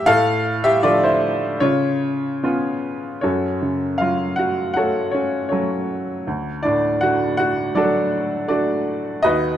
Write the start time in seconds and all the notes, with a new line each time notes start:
0.06 A2 A4 F5
0.64 G4 E5
0.83 D3 F3 A3 F4 D5
1.03 E4 C5
1.60 C#3 F4 C#5
2.43 B3 C#4 F4
3.21 F#2 C#4 F#4 A4 C#5
3.62 C#3
3.98 F#3 F4 F5
4.36 F#4 F#5
4.74 F#4 A4 C#5 F#5
4.78 A3
5.11 C#4 C#5
5.49 F#3 C#4 A4 C#5
6.27 D2
6.63 A2 D4 D5
7.01 D3 F#4 F#5
7.37 F#4 F#5
7.75 F#3 D4 F#4 A4 D5
8.48 A3 D4 F#4 D5
9.22 D#2 D#4 F#4 B4 D#5